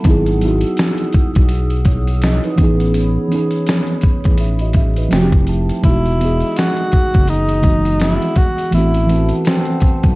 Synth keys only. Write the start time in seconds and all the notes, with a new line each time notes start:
0.03 F#3 B3 D#4
0.08 E4 G#4
0.40 F#3 B3 D#4
0.45 E4 F#4
1.87 E4 C#5
2.23 F#4 D#5
2.44 D#4 B4
2.56 E3 B3 C#4
2.61 D#4 G#4
3.28 E3 B3 C#4
3.33 D#4 G#4
4.40 G#4 E5
4.61 F#4 D#5
4.77 E5
4.98 D#4 B4 D#5
5.09 F3 A3 C4 G5
5.14 E4 F#4
5.22 G4
5.49 A5
5.82 E3 G#3 B3
5.87 D#4 F#4
6.18 E3 G#3 B3
6.23 G#4 D#5
7.62 E3 G#3 B3
7.67 F#4 D#5
8.71 E3 A3 B3
8.76 C4 F#4
9.06 E3 A3 B4
9.12 C4 F#4